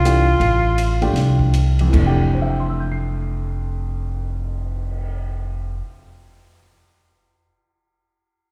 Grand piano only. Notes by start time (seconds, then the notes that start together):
0.04 E3 A3 D4 G4
1.02 F3 A3 D4 G4
1.81 F2
1.87 E3
1.94 A3
2.00 D4
2.07 G4
2.35 C5
2.42 E5
2.50 G5
2.60 C6
2.70 E6
2.80 G6
2.92 C7